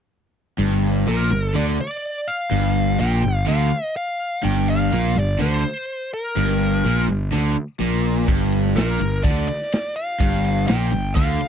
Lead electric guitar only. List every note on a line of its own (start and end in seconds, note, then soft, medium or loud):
1.08 1.45 A#4 medium
1.45 1.57 A4 medium
1.56 1.62 D5 medium
1.81 2.29 D5 medium
2.28 3.00 F5 medium
3.00 3.45 G5 loud
3.48 3.93 F5 medium
3.97 4.41 F5 medium
4.45 4.69 G5 loud
4.69 5.18 F5 loud
5.18 5.41 D5 medium
5.41 6.09 C5 medium
6.14 7.05 A#4 medium
8.76 9.26 A#4 medium
9.23 9.47 D5 medium
9.48 9.93 D5 medium
9.96 10.64 F5 medium
10.67 11.15 G5 loud
11.15 11.48 F5 medium